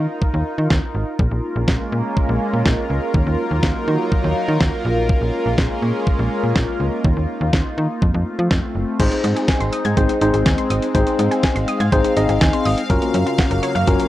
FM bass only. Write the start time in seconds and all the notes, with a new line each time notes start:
0.34 D#2
0.58 D#3
0.71 D#2
0.95 G#1
1.19 A#1
1.31 A#1
1.56 A#1
1.68 A#1
1.92 A#2
2.29 A#1
2.53 A#2
2.66 A#1
2.90 C#2
3.14 D#2
3.27 D#2
3.51 D#2
3.63 D#2
3.88 D#3
4.24 D#2
4.48 D#3
4.61 D#2
4.85 A#1
5.21 A#1
5.46 A#1
5.58 A#1
5.82 A#2
6.19 A#1
6.43 A#2
6.56 A#1
6.80 C#2
7.04 D#2
7.17 D#2
7.41 D#2
7.53 D#2
7.78 D#3
8.02 F2
8.14 F2
8.39 F3
8.51 F2
8.75 F#1
9.00 G#1
9.24 G#2
9.61 G#1
9.85 G#2
9.97 G#1
10.22 G#1
10.34 G#1
10.46 D#2
10.70 G#1
10.95 G#1
11.19 G#2
11.56 G#1
11.80 G#2
11.92 G#1
12.17 G#1
12.29 G#1
12.41 D#2
12.66 G#1
12.90 F#1
13.14 F#2
13.51 F#1
13.75 F#2
13.88 F#1